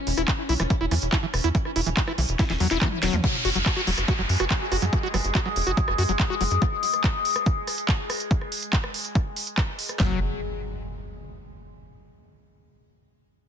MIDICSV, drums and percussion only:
0, 0, Header, 1, 2, 480
1, 0, Start_track
1, 0, Tempo, 422535
1, 1759, Time_signature, 4, 2, 24, 8
1, 15320, End_track
2, 0, Start_track
2, 0, Title_t, "Drums"
2, 78, Note_on_c, 9, 46, 102
2, 192, Note_off_c, 9, 46, 0
2, 198, Note_on_c, 9, 37, 44
2, 198, Note_on_c, 9, 42, 70
2, 312, Note_off_c, 9, 37, 0
2, 312, Note_off_c, 9, 42, 0
2, 318, Note_on_c, 9, 36, 115
2, 318, Note_on_c, 9, 39, 115
2, 318, Note_on_c, 9, 42, 69
2, 432, Note_off_c, 9, 36, 0
2, 432, Note_off_c, 9, 39, 0
2, 432, Note_off_c, 9, 42, 0
2, 558, Note_on_c, 9, 46, 105
2, 672, Note_off_c, 9, 46, 0
2, 678, Note_on_c, 9, 37, 88
2, 678, Note_on_c, 9, 42, 70
2, 792, Note_off_c, 9, 37, 0
2, 792, Note_off_c, 9, 42, 0
2, 798, Note_on_c, 9, 36, 122
2, 798, Note_on_c, 9, 42, 67
2, 912, Note_off_c, 9, 36, 0
2, 912, Note_off_c, 9, 42, 0
2, 1038, Note_on_c, 9, 37, 43
2, 1038, Note_on_c, 9, 46, 105
2, 1152, Note_off_c, 9, 37, 0
2, 1152, Note_off_c, 9, 46, 0
2, 1158, Note_on_c, 9, 42, 70
2, 1272, Note_off_c, 9, 42, 0
2, 1278, Note_on_c, 9, 36, 114
2, 1278, Note_on_c, 9, 39, 120
2, 1278, Note_on_c, 9, 42, 70
2, 1391, Note_off_c, 9, 39, 0
2, 1391, Note_off_c, 9, 42, 0
2, 1392, Note_off_c, 9, 36, 0
2, 1518, Note_on_c, 9, 37, 85
2, 1518, Note_on_c, 9, 46, 101
2, 1632, Note_off_c, 9, 37, 0
2, 1632, Note_off_c, 9, 46, 0
2, 1638, Note_on_c, 9, 42, 67
2, 1752, Note_off_c, 9, 42, 0
2, 1758, Note_on_c, 9, 36, 120
2, 1758, Note_on_c, 9, 42, 71
2, 1872, Note_off_c, 9, 36, 0
2, 1872, Note_off_c, 9, 42, 0
2, 1878, Note_on_c, 9, 37, 43
2, 1992, Note_off_c, 9, 37, 0
2, 1998, Note_on_c, 9, 46, 106
2, 2112, Note_off_c, 9, 46, 0
2, 2118, Note_on_c, 9, 42, 72
2, 2232, Note_off_c, 9, 42, 0
2, 2238, Note_on_c, 9, 36, 118
2, 2238, Note_on_c, 9, 39, 124
2, 2238, Note_on_c, 9, 42, 68
2, 2352, Note_off_c, 9, 36, 0
2, 2352, Note_off_c, 9, 39, 0
2, 2352, Note_off_c, 9, 42, 0
2, 2358, Note_on_c, 9, 37, 82
2, 2471, Note_off_c, 9, 37, 0
2, 2478, Note_on_c, 9, 46, 103
2, 2591, Note_off_c, 9, 46, 0
2, 2598, Note_on_c, 9, 42, 70
2, 2711, Note_off_c, 9, 42, 0
2, 2718, Note_on_c, 9, 36, 122
2, 2718, Note_on_c, 9, 38, 62
2, 2718, Note_on_c, 9, 42, 73
2, 2831, Note_off_c, 9, 36, 0
2, 2831, Note_off_c, 9, 38, 0
2, 2831, Note_off_c, 9, 42, 0
2, 2838, Note_on_c, 9, 38, 57
2, 2951, Note_off_c, 9, 38, 0
2, 2958, Note_on_c, 9, 46, 110
2, 3071, Note_off_c, 9, 46, 0
2, 3078, Note_on_c, 9, 38, 70
2, 3078, Note_on_c, 9, 42, 70
2, 3191, Note_off_c, 9, 38, 0
2, 3191, Note_off_c, 9, 42, 0
2, 3198, Note_on_c, 9, 36, 118
2, 3198, Note_on_c, 9, 39, 123
2, 3198, Note_on_c, 9, 42, 73
2, 3198, Note_on_c, 9, 47, 92
2, 3312, Note_off_c, 9, 36, 0
2, 3312, Note_off_c, 9, 39, 0
2, 3312, Note_off_c, 9, 42, 0
2, 3312, Note_off_c, 9, 47, 0
2, 3438, Note_on_c, 9, 38, 100
2, 3438, Note_on_c, 9, 46, 104
2, 3552, Note_off_c, 9, 38, 0
2, 3552, Note_off_c, 9, 46, 0
2, 3558, Note_on_c, 9, 42, 72
2, 3558, Note_on_c, 9, 45, 92
2, 3672, Note_off_c, 9, 42, 0
2, 3672, Note_off_c, 9, 45, 0
2, 3678, Note_on_c, 9, 36, 115
2, 3678, Note_on_c, 9, 37, 39
2, 3678, Note_on_c, 9, 42, 67
2, 3792, Note_off_c, 9, 36, 0
2, 3792, Note_off_c, 9, 37, 0
2, 3792, Note_off_c, 9, 42, 0
2, 3918, Note_on_c, 9, 46, 105
2, 4032, Note_off_c, 9, 46, 0
2, 4038, Note_on_c, 9, 42, 69
2, 4152, Note_off_c, 9, 42, 0
2, 4158, Note_on_c, 9, 36, 123
2, 4158, Note_on_c, 9, 37, 80
2, 4158, Note_on_c, 9, 39, 124
2, 4158, Note_on_c, 9, 42, 70
2, 4272, Note_off_c, 9, 36, 0
2, 4272, Note_off_c, 9, 37, 0
2, 4272, Note_off_c, 9, 39, 0
2, 4272, Note_off_c, 9, 42, 0
2, 4398, Note_on_c, 9, 46, 109
2, 4512, Note_off_c, 9, 46, 0
2, 4518, Note_on_c, 9, 37, 41
2, 4518, Note_on_c, 9, 42, 69
2, 4632, Note_off_c, 9, 37, 0
2, 4632, Note_off_c, 9, 42, 0
2, 4638, Note_on_c, 9, 36, 125
2, 4638, Note_on_c, 9, 42, 68
2, 4752, Note_off_c, 9, 36, 0
2, 4752, Note_off_c, 9, 42, 0
2, 4878, Note_on_c, 9, 46, 109
2, 4992, Note_off_c, 9, 46, 0
2, 4998, Note_on_c, 9, 37, 80
2, 4998, Note_on_c, 9, 42, 69
2, 5112, Note_off_c, 9, 37, 0
2, 5112, Note_off_c, 9, 42, 0
2, 5118, Note_on_c, 9, 36, 115
2, 5118, Note_on_c, 9, 39, 127
2, 5118, Note_on_c, 9, 42, 69
2, 5232, Note_off_c, 9, 36, 0
2, 5232, Note_off_c, 9, 39, 0
2, 5232, Note_off_c, 9, 42, 0
2, 5358, Note_on_c, 9, 37, 40
2, 5358, Note_on_c, 9, 46, 106
2, 5472, Note_off_c, 9, 37, 0
2, 5472, Note_off_c, 9, 46, 0
2, 5478, Note_on_c, 9, 42, 69
2, 5592, Note_off_c, 9, 42, 0
2, 5598, Note_on_c, 9, 36, 124
2, 5598, Note_on_c, 9, 42, 66
2, 5711, Note_off_c, 9, 36, 0
2, 5712, Note_off_c, 9, 42, 0
2, 5838, Note_on_c, 9, 37, 76
2, 5838, Note_on_c, 9, 46, 111
2, 5952, Note_off_c, 9, 37, 0
2, 5952, Note_off_c, 9, 46, 0
2, 5958, Note_on_c, 9, 42, 68
2, 6072, Note_off_c, 9, 42, 0
2, 6078, Note_on_c, 9, 36, 123
2, 6078, Note_on_c, 9, 39, 126
2, 6078, Note_on_c, 9, 42, 67
2, 6192, Note_off_c, 9, 36, 0
2, 6192, Note_off_c, 9, 39, 0
2, 6192, Note_off_c, 9, 42, 0
2, 6198, Note_on_c, 9, 37, 38
2, 6312, Note_off_c, 9, 37, 0
2, 6318, Note_on_c, 9, 46, 113
2, 6432, Note_off_c, 9, 46, 0
2, 6438, Note_on_c, 9, 42, 69
2, 6552, Note_off_c, 9, 42, 0
2, 6558, Note_on_c, 9, 36, 123
2, 6558, Note_on_c, 9, 42, 65
2, 6672, Note_off_c, 9, 36, 0
2, 6672, Note_off_c, 9, 42, 0
2, 6678, Note_on_c, 9, 37, 78
2, 6792, Note_off_c, 9, 37, 0
2, 6798, Note_on_c, 9, 46, 114
2, 6912, Note_off_c, 9, 46, 0
2, 6918, Note_on_c, 9, 42, 65
2, 7032, Note_off_c, 9, 42, 0
2, 7038, Note_on_c, 9, 36, 126
2, 7038, Note_on_c, 9, 37, 39
2, 7038, Note_on_c, 9, 39, 126
2, 7038, Note_on_c, 9, 42, 66
2, 7151, Note_off_c, 9, 36, 0
2, 7152, Note_off_c, 9, 37, 0
2, 7152, Note_off_c, 9, 39, 0
2, 7152, Note_off_c, 9, 42, 0
2, 7278, Note_on_c, 9, 46, 110
2, 7392, Note_off_c, 9, 46, 0
2, 7398, Note_on_c, 9, 42, 67
2, 7511, Note_off_c, 9, 42, 0
2, 7518, Note_on_c, 9, 36, 122
2, 7518, Note_on_c, 9, 37, 74
2, 7518, Note_on_c, 9, 42, 66
2, 7632, Note_off_c, 9, 36, 0
2, 7632, Note_off_c, 9, 37, 0
2, 7632, Note_off_c, 9, 42, 0
2, 7758, Note_on_c, 9, 46, 113
2, 7872, Note_off_c, 9, 46, 0
2, 7878, Note_on_c, 9, 37, 39
2, 7878, Note_on_c, 9, 42, 65
2, 7992, Note_off_c, 9, 37, 0
2, 7992, Note_off_c, 9, 42, 0
2, 7998, Note_on_c, 9, 36, 121
2, 7998, Note_on_c, 9, 39, 124
2, 7998, Note_on_c, 9, 42, 65
2, 8112, Note_off_c, 9, 36, 0
2, 8112, Note_off_c, 9, 39, 0
2, 8112, Note_off_c, 9, 42, 0
2, 8238, Note_on_c, 9, 46, 111
2, 8352, Note_off_c, 9, 46, 0
2, 8358, Note_on_c, 9, 37, 78
2, 8358, Note_on_c, 9, 42, 64
2, 8472, Note_off_c, 9, 37, 0
2, 8472, Note_off_c, 9, 42, 0
2, 8478, Note_on_c, 9, 36, 127
2, 8478, Note_on_c, 9, 42, 66
2, 8591, Note_off_c, 9, 42, 0
2, 8592, Note_off_c, 9, 36, 0
2, 8718, Note_on_c, 9, 37, 40
2, 8718, Note_on_c, 9, 46, 111
2, 8832, Note_off_c, 9, 37, 0
2, 8832, Note_off_c, 9, 46, 0
2, 8838, Note_on_c, 9, 42, 65
2, 8952, Note_off_c, 9, 42, 0
2, 8958, Note_on_c, 9, 36, 124
2, 8958, Note_on_c, 9, 39, 126
2, 8958, Note_on_c, 9, 42, 65
2, 9072, Note_off_c, 9, 36, 0
2, 9072, Note_off_c, 9, 39, 0
2, 9072, Note_off_c, 9, 42, 0
2, 9198, Note_on_c, 9, 37, 78
2, 9198, Note_on_c, 9, 46, 110
2, 9312, Note_off_c, 9, 37, 0
2, 9312, Note_off_c, 9, 46, 0
2, 9318, Note_on_c, 9, 42, 67
2, 9432, Note_off_c, 9, 42, 0
2, 9438, Note_on_c, 9, 36, 127
2, 9438, Note_on_c, 9, 42, 62
2, 9552, Note_off_c, 9, 36, 0
2, 9552, Note_off_c, 9, 42, 0
2, 9559, Note_on_c, 9, 37, 40
2, 9672, Note_off_c, 9, 37, 0
2, 9678, Note_on_c, 9, 46, 114
2, 9792, Note_off_c, 9, 46, 0
2, 9799, Note_on_c, 9, 42, 66
2, 9912, Note_off_c, 9, 42, 0
2, 9918, Note_on_c, 9, 36, 120
2, 9919, Note_on_c, 9, 39, 117
2, 9919, Note_on_c, 9, 42, 63
2, 10032, Note_off_c, 9, 36, 0
2, 10032, Note_off_c, 9, 39, 0
2, 10032, Note_off_c, 9, 42, 0
2, 10039, Note_on_c, 9, 37, 76
2, 10152, Note_off_c, 9, 37, 0
2, 10159, Note_on_c, 9, 46, 111
2, 10272, Note_off_c, 9, 46, 0
2, 10278, Note_on_c, 9, 42, 65
2, 10392, Note_off_c, 9, 42, 0
2, 10398, Note_on_c, 9, 36, 127
2, 10399, Note_on_c, 9, 37, 39
2, 10399, Note_on_c, 9, 42, 61
2, 10512, Note_off_c, 9, 36, 0
2, 10512, Note_off_c, 9, 37, 0
2, 10512, Note_off_c, 9, 42, 0
2, 10638, Note_on_c, 9, 46, 111
2, 10752, Note_off_c, 9, 46, 0
2, 10758, Note_on_c, 9, 42, 62
2, 10872, Note_off_c, 9, 42, 0
2, 10878, Note_on_c, 9, 36, 123
2, 10878, Note_on_c, 9, 37, 77
2, 10878, Note_on_c, 9, 39, 119
2, 10878, Note_on_c, 9, 42, 63
2, 10992, Note_off_c, 9, 36, 0
2, 10992, Note_off_c, 9, 37, 0
2, 10992, Note_off_c, 9, 39, 0
2, 10992, Note_off_c, 9, 42, 0
2, 11118, Note_on_c, 9, 46, 111
2, 11232, Note_off_c, 9, 46, 0
2, 11238, Note_on_c, 9, 37, 39
2, 11238, Note_on_c, 9, 42, 64
2, 11352, Note_off_c, 9, 37, 0
2, 11352, Note_off_c, 9, 42, 0
2, 11358, Note_on_c, 9, 36, 106
2, 11358, Note_on_c, 9, 38, 105
2, 11358, Note_on_c, 9, 39, 86
2, 11472, Note_off_c, 9, 36, 0
2, 11472, Note_off_c, 9, 38, 0
2, 11472, Note_off_c, 9, 39, 0
2, 15320, End_track
0, 0, End_of_file